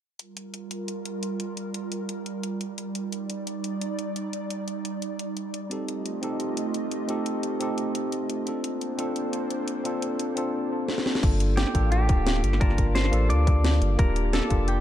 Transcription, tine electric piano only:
5.70 C4 D#4 G4 A4
6.22 C4 D#4 G4 A4
7.08 C4 D#4 G4 A4
7.60 C4 D#4 G4 A4
8.46 C4 D4 F4 A4
8.97 C4 D4 F4 A4
9.84 C4 D4 F4 A4
10.35 C4 D4 F4 A4
11.22 A#3 D4 F4 A4
11.73 A#3 D4 F4 A4
12.60 A#3 D4 F4 A5
13.11 A#3 D4 F4 A4
13.97 A#3 D4 F4 G4
14.49 A#3 D4 F4 G4

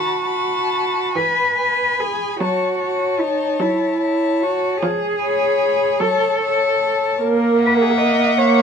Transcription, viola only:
Already playing: D#3
1.16 E3
2.41 F#3
3.60 F#3
4.83 F3
6.00 F#3
7.21 A#3
8.38 A#3

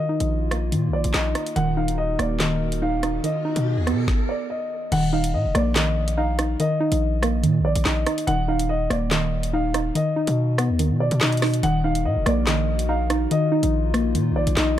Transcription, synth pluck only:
Already playing: D#3
0.09 D#4
0.51 A#3
0.72 D#3
1.14 D#4
1.35 D#4
1.57 D#3
1.77 D#4
2.19 A#3
2.40 D#3
2.82 D#4
3.03 D#4
3.24 D#3
3.45 D#4
3.87 B3
4.92 D#3
5.13 D#4
5.55 A#3
5.76 D#3
6.18 D#4
6.39 D#4
6.60 D#3
6.80 D#4
7.23 A#3
7.43 D#3
7.85 D#4
8.06 D#4
8.28 D#3
8.48 D#4
8.90 A#3
9.11 D#3
9.53 D#4
9.74 D#4
9.95 D#3
10.16 D#4
10.58 B3
10.79 D#3
11.21 D#4
11.42 D#4
11.63 D#3
11.84 D#4
12.27 A#3
12.47 D#3
12.89 D#4
13.10 D#4
13.31 D#3
13.52 D#4
13.94 A#3
14.15 D#3
14.57 D#4

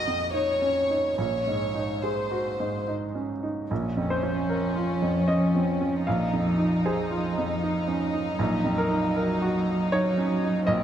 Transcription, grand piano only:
Already playing: A#1 F2 D#4 F#4 A#4
0.07 F2
0.34 D#4
0.62 C#4
0.90 D#4
1.18 A#1
1.47 G#2
1.75 D#4
2.03 G#4
2.31 F#4
2.60 G#2
2.88 D#4
3.15 C#4
3.43 D#4
3.71 A#1
3.97 F2
4.10 C5
4.23 C#4
4.49 A#4
4.76 F4
5.02 F2
5.28 C#4 D#5
5.55 C4
5.81 C#4
6.07 A#1 F5
6.33 F2
6.58 D#4
6.86 G#4 C5
7.11 F4
7.38 F2
7.63 D#4
7.88 C#4
8.13 D#4
8.39 A#1
8.64 F2
8.78 A#4
8.90 D#4
9.17 A#4
9.42 F#4
9.92 D#4 C#5
10.18 C#4
10.43 D#4
10.67 A#1 D#5

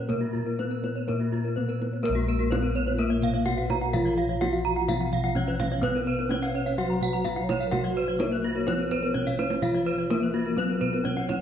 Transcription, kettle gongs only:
Already playing: A#2
0.09 A#4
0.59 B3
1.09 A#2
1.57 B3
2.04 A#4
2.09 A#1
2.52 B3
3.46 B3
3.94 F4
4.41 B3
4.88 B2
5.37 B3
5.83 B4
6.30 B3
6.78 F#3
7.26 B3
7.73 F#4
8.21 B3
8.68 F3
9.15 B3
9.63 F4
10.11 B3
10.57 F#3
11.05 B3

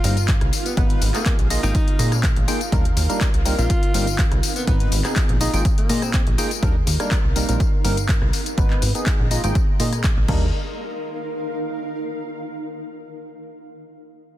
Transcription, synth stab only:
0.04 G3 A#3 C4 D#4 A#4
0.77 B3 D#4 B4
1.14 B3 D#4 G#4
1.50 A#3 D#4 F4 G#4 D#5
1.63 A#3 D#4 F4 G#4 G5
1.99 A#3 D#4 F4 G#4 D#5
2.48 A#3 D#4 F4 G#4 G5
2.72 G3 A#3 D4 D#4 A#4
3.10 G3 A#3 D4 D#4 A#4
3.46 G3 A#3 C4 D#4 A#4
3.58 G3 A#3 C4 D#4 A#4
3.94 G3 A#3 C4 D#4 A#4
4.67 B3 D#4 B4
5.05 B3 D#4 G#4
5.41 A#3 D#4 F4 G#4 D#5
5.54 A#3 D#4 F4 G#4 G5
5.89 A#3 D#4 F4 G#4 D#5
6.38 A#3 D#4 F4 G#4 G5
6.63 G3 A#3 D4 D#4 A#4
7.00 G3 A#3 D4 D#4 A#4
7.36 G3 A#3 C4 D#4 A#4
7.49 G3 A#3 C4 D#4 A#4
7.85 G3 A#3 C4 D#4 A#4
8.58 B3 D#4 B4
8.95 B3 D#4 G#4
9.31 A#3 D#4 F4 G#4 D#5
9.44 A#3 D#4 F4 G#4 G5
9.80 A#3 D#4 F4 G#4 D#5
10.28 G3 A#3 D4 D#4 A#4

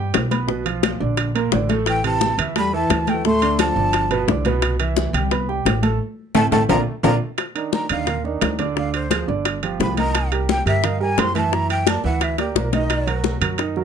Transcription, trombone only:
1.87 E3
2.05 E3
2.58 G3
2.75 E3
3.10 E3
3.27 A3
3.62 F3
6.35 A3
6.52 A3
6.69 F3
7.04 F3

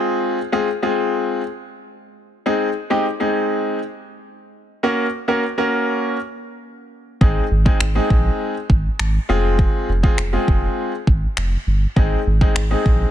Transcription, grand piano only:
Already playing: G#3 C4 F4 G#4
0.52 G#3 C4 F4 G#4
0.82 G#3 C4 F4 G#4
2.46 G#3 C4 D#4 G#4
2.90 G#3 C4 D#4 G4
3.20 G#3 C4 D#4 G#4
4.83 A#3 C#4 F#4 A#4
5.28 A#3 C#4 F#4 A#4
5.58 A#3 C#4 F#4 A#4
7.21 G#3 C4 D#4 G#4
7.65 G#3 C4 D#4 G#4
7.95 G#3 C4 D#4 G#4
9.29 G#3 C4 F4 G#4
10.03 G#3 C4 F4 G#4
10.33 G#3 C4 F4 G#4
11.96 G#3 C4 D#4 G#4
12.41 G#3 C4 D#4 G#4
12.71 G#3 C4 D#4 G#4

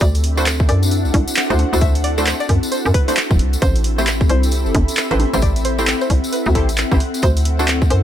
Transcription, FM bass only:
0.01 D2
0.69 F#2
1.05 C2
1.14 C2
1.50 D2
1.73 D2
2.49 F#2
2.86 F#2
3.31 D1
3.39 C2
3.62 A1
4.30 C2
4.66 G1
4.75 G1
5.11 A1
5.34 A1
6.10 C2
6.46 D2
6.55 A1
6.92 A1
7.23 D2
7.90 F#2

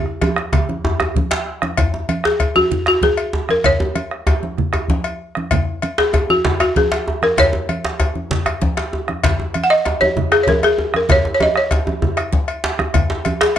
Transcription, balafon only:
2.25 G#4
2.56 F#4
2.88 F#4
3.03 G#4
3.51 A#4
3.66 C#5
5.98 G#4
6.30 F#4
6.61 F#4
6.77 G#4
7.23 A#4
7.40 C#5
9.64 F#5
9.70 D#5
10.01 C#5
10.32 G#4
10.43 C#5
10.49 A#4
10.64 G#4
10.96 A#4
11.12 C#5
11.35 C#5
11.43 D#5
11.57 C#5
13.41 G#4

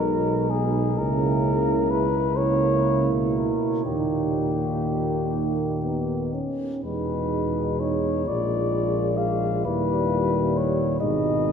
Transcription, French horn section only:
Already playing: D#4
0.98 E4
2.36 E4
3.85 D#4
6.84 D#4
8.27 F4
9.65 E4
11.00 D#4

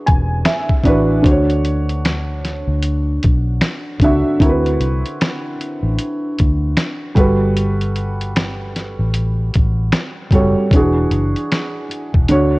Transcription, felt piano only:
Already playing: E3 D4 F#4 G#4
0.07 G#5
0.46 E5
0.84 E3 D4 F#4 B4 D5
1.22 D3 D4 F#4 C5
1.31 C#5
4.02 D3 D4 F#4 E5
4.39 D3 C4 E4 F#4 A#4
4.49 B4
7.15 G3 F#4 A4 B4
10.32 G3 F#4 A4 C#5
10.73 E3 D4 F#4 G#4
12.29 D3 D4 F#4 C#5

